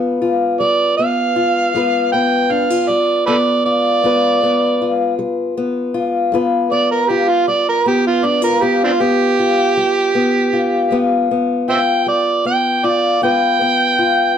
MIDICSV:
0, 0, Header, 1, 3, 480
1, 0, Start_track
1, 0, Tempo, 766284
1, 2521, Time_signature, 12, 3, 24, 8
1, 9006, End_track
2, 0, Start_track
2, 0, Title_t, "Harmonica"
2, 0, Program_c, 0, 22
2, 377, Note_on_c, 0, 74, 97
2, 603, Note_off_c, 0, 74, 0
2, 610, Note_on_c, 0, 77, 101
2, 1304, Note_off_c, 0, 77, 0
2, 1330, Note_on_c, 0, 79, 78
2, 1574, Note_on_c, 0, 77, 82
2, 1583, Note_off_c, 0, 79, 0
2, 1805, Note_on_c, 0, 74, 75
2, 1814, Note_off_c, 0, 77, 0
2, 2036, Note_off_c, 0, 74, 0
2, 2045, Note_on_c, 0, 69, 57
2, 2045, Note_on_c, 0, 71, 57
2, 2045, Note_on_c, 0, 74, 82
2, 2100, Note_off_c, 0, 71, 0
2, 2101, Note_off_c, 0, 69, 0
2, 2276, Note_off_c, 0, 74, 0
2, 2289, Note_on_c, 0, 74, 104
2, 3220, Note_off_c, 0, 74, 0
2, 4206, Note_on_c, 0, 74, 85
2, 4315, Note_off_c, 0, 74, 0
2, 4332, Note_on_c, 0, 70, 78
2, 4442, Note_on_c, 0, 67, 77
2, 4451, Note_off_c, 0, 70, 0
2, 4562, Note_on_c, 0, 65, 84
2, 4571, Note_off_c, 0, 67, 0
2, 4673, Note_off_c, 0, 65, 0
2, 4686, Note_on_c, 0, 74, 89
2, 4796, Note_off_c, 0, 74, 0
2, 4816, Note_on_c, 0, 70, 82
2, 4921, Note_off_c, 0, 70, 0
2, 4932, Note_on_c, 0, 67, 81
2, 5039, Note_off_c, 0, 67, 0
2, 5056, Note_on_c, 0, 65, 80
2, 5176, Note_on_c, 0, 74, 74
2, 5186, Note_off_c, 0, 65, 0
2, 5281, Note_off_c, 0, 74, 0
2, 5285, Note_on_c, 0, 70, 81
2, 5402, Note_on_c, 0, 67, 77
2, 5411, Note_off_c, 0, 70, 0
2, 5514, Note_off_c, 0, 67, 0
2, 5539, Note_on_c, 0, 60, 58
2, 5539, Note_on_c, 0, 62, 58
2, 5539, Note_on_c, 0, 65, 83
2, 5578, Note_off_c, 0, 62, 0
2, 5583, Note_off_c, 0, 60, 0
2, 5643, Note_on_c, 0, 67, 108
2, 5653, Note_off_c, 0, 65, 0
2, 7060, Note_off_c, 0, 67, 0
2, 7326, Note_on_c, 0, 72, 64
2, 7326, Note_on_c, 0, 76, 64
2, 7326, Note_on_c, 0, 79, 92
2, 7367, Note_off_c, 0, 72, 0
2, 7378, Note_off_c, 0, 76, 0
2, 7559, Note_off_c, 0, 79, 0
2, 7569, Note_on_c, 0, 74, 82
2, 7800, Note_off_c, 0, 74, 0
2, 7807, Note_on_c, 0, 79, 91
2, 8048, Note_on_c, 0, 74, 86
2, 8057, Note_off_c, 0, 79, 0
2, 8280, Note_off_c, 0, 74, 0
2, 8289, Note_on_c, 0, 79, 120
2, 9006, Note_off_c, 0, 79, 0
2, 9006, End_track
3, 0, Start_track
3, 0, Title_t, "Steel-string acoustic guitar"
3, 0, Program_c, 1, 25
3, 0, Note_on_c, 1, 43, 66
3, 0, Note_on_c, 1, 59, 51
3, 0, Note_on_c, 1, 65, 57
3, 0, Note_on_c, 1, 71, 62
3, 82, Note_off_c, 1, 43, 0
3, 133, Note_off_c, 1, 65, 0
3, 136, Note_on_c, 1, 65, 55
3, 378, Note_on_c, 1, 55, 66
3, 618, Note_off_c, 1, 59, 0
3, 621, Note_on_c, 1, 59, 59
3, 802, Note_off_c, 1, 55, 0
3, 849, Note_off_c, 1, 65, 0
3, 852, Note_on_c, 1, 65, 58
3, 1092, Note_on_c, 1, 43, 70
3, 1094, Note_off_c, 1, 59, 0
3, 1096, Note_on_c, 1, 59, 58
3, 1098, Note_off_c, 1, 65, 0
3, 1101, Note_on_c, 1, 65, 60
3, 1106, Note_off_c, 1, 71, 0
3, 1108, Note_on_c, 1, 71, 67
3, 1337, Note_off_c, 1, 59, 0
3, 1339, Note_on_c, 1, 59, 53
3, 1519, Note_off_c, 1, 43, 0
3, 1565, Note_off_c, 1, 65, 0
3, 1567, Note_on_c, 1, 62, 53
3, 1693, Note_off_c, 1, 62, 0
3, 1693, Note_on_c, 1, 65, 47
3, 1812, Note_on_c, 1, 55, 58
3, 2049, Note_off_c, 1, 59, 0
3, 2052, Note_on_c, 1, 59, 61
3, 2239, Note_off_c, 1, 55, 0
3, 2284, Note_off_c, 1, 65, 0
3, 2292, Note_on_c, 1, 65, 54
3, 2526, Note_on_c, 1, 43, 62
3, 2528, Note_off_c, 1, 59, 0
3, 2530, Note_on_c, 1, 59, 54
3, 2532, Note_off_c, 1, 65, 0
3, 2535, Note_on_c, 1, 65, 59
3, 2540, Note_off_c, 1, 71, 0
3, 2543, Note_on_c, 1, 71, 59
3, 2774, Note_off_c, 1, 59, 0
3, 2776, Note_on_c, 1, 59, 55
3, 2956, Note_off_c, 1, 43, 0
3, 3015, Note_off_c, 1, 65, 0
3, 3017, Note_on_c, 1, 65, 57
3, 3249, Note_on_c, 1, 55, 64
3, 3490, Note_off_c, 1, 59, 0
3, 3492, Note_on_c, 1, 59, 63
3, 3677, Note_off_c, 1, 55, 0
3, 3720, Note_off_c, 1, 65, 0
3, 3723, Note_on_c, 1, 65, 57
3, 3958, Note_on_c, 1, 43, 78
3, 3966, Note_off_c, 1, 59, 0
3, 3967, Note_off_c, 1, 65, 0
3, 3968, Note_on_c, 1, 59, 55
3, 3969, Note_on_c, 1, 65, 57
3, 3973, Note_off_c, 1, 71, 0
3, 3975, Note_on_c, 1, 71, 69
3, 4205, Note_off_c, 1, 59, 0
3, 4207, Note_on_c, 1, 59, 57
3, 4392, Note_off_c, 1, 43, 0
3, 4446, Note_off_c, 1, 65, 0
3, 4448, Note_on_c, 1, 65, 56
3, 4684, Note_on_c, 1, 55, 57
3, 4921, Note_off_c, 1, 59, 0
3, 4923, Note_on_c, 1, 59, 59
3, 5115, Note_off_c, 1, 55, 0
3, 5158, Note_off_c, 1, 65, 0
3, 5160, Note_on_c, 1, 62, 58
3, 5273, Note_off_c, 1, 62, 0
3, 5273, Note_on_c, 1, 65, 47
3, 5394, Note_off_c, 1, 65, 0
3, 5394, Note_on_c, 1, 43, 66
3, 5396, Note_off_c, 1, 59, 0
3, 5399, Note_on_c, 1, 59, 57
3, 5403, Note_on_c, 1, 65, 58
3, 5421, Note_off_c, 1, 71, 0
3, 5637, Note_off_c, 1, 59, 0
3, 5640, Note_on_c, 1, 59, 59
3, 5831, Note_off_c, 1, 43, 0
3, 5881, Note_off_c, 1, 65, 0
3, 5884, Note_on_c, 1, 65, 58
3, 6121, Note_on_c, 1, 55, 66
3, 6355, Note_off_c, 1, 59, 0
3, 6357, Note_on_c, 1, 59, 58
3, 6555, Note_off_c, 1, 55, 0
3, 6594, Note_off_c, 1, 65, 0
3, 6596, Note_on_c, 1, 65, 57
3, 6832, Note_on_c, 1, 43, 71
3, 6837, Note_off_c, 1, 59, 0
3, 6840, Note_off_c, 1, 65, 0
3, 6840, Note_on_c, 1, 59, 62
3, 6843, Note_on_c, 1, 65, 62
3, 7078, Note_off_c, 1, 59, 0
3, 7086, Note_on_c, 1, 59, 57
3, 7271, Note_off_c, 1, 43, 0
3, 7311, Note_off_c, 1, 65, 0
3, 7318, Note_on_c, 1, 65, 59
3, 7558, Note_on_c, 1, 55, 59
3, 7793, Note_off_c, 1, 59, 0
3, 7801, Note_on_c, 1, 59, 55
3, 7994, Note_off_c, 1, 55, 0
3, 8036, Note_off_c, 1, 65, 0
3, 8043, Note_on_c, 1, 65, 56
3, 8255, Note_off_c, 1, 59, 0
3, 8256, Note_off_c, 1, 65, 0
3, 8279, Note_on_c, 1, 43, 64
3, 8285, Note_on_c, 1, 59, 59
3, 8288, Note_on_c, 1, 65, 57
3, 8294, Note_on_c, 1, 71, 60
3, 8519, Note_off_c, 1, 59, 0
3, 8526, Note_on_c, 1, 59, 54
3, 8716, Note_off_c, 1, 43, 0
3, 8755, Note_off_c, 1, 65, 0
3, 8763, Note_on_c, 1, 65, 54
3, 9006, Note_off_c, 1, 59, 0
3, 9006, Note_off_c, 1, 65, 0
3, 9006, Note_off_c, 1, 71, 0
3, 9006, End_track
0, 0, End_of_file